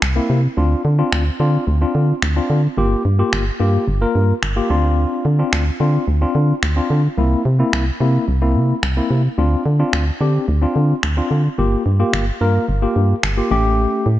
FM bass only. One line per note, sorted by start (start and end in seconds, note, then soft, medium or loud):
0.02 0.20 C2 loud
0.30 0.48 C3 loud
0.57 0.75 D2 loud
0.85 1.03 D3 loud
1.12 1.30 D2 loud
1.40 1.58 D3 medium
1.67 1.85 D2 loud
1.95 2.13 D3 medium
2.22 2.40 D2 loud
2.50 2.68 D3 loud
2.77 2.95 G1 loud
3.05 3.23 G2 loud
3.33 3.51 G1 loud
3.60 3.78 G2 medium
3.88 4.05 G1 loud
4.15 4.33 G2 loud
4.43 4.61 G1 medium
4.70 5.06 D2 loud
5.25 5.43 D3 medium
5.53 5.71 D2 loud
5.80 5.98 D3 medium
6.08 6.26 D2 loud
6.35 6.53 D3 loud
6.63 6.81 D2 loud
6.90 7.08 D3 loud
7.18 7.36 C2 loud
7.45 7.63 C3 loud
7.73 7.91 C2 loud
8.00 8.18 C3 loud
8.28 8.57 C2 loud
8.55 8.73 C3 loud
8.83 9.01 C2 loud
9.10 9.28 C3 loud
9.38 9.56 D2 loud
9.66 9.83 D3 loud
9.93 10.11 D2 loud
10.21 10.38 D3 medium
10.48 10.66 D2 loud
10.76 10.94 D3 medium
11.03 11.21 D2 loud
11.31 11.49 D3 medium
11.58 11.76 G1 loud
11.86 12.04 G2 loud
12.13 12.31 G1 loud
12.41 12.59 G2 medium
12.69 12.86 G1 loud
12.96 13.14 G2 loud
13.23 13.41 G1 loud
13.51 13.87 A1 loud
14.06 14.20 A2 loud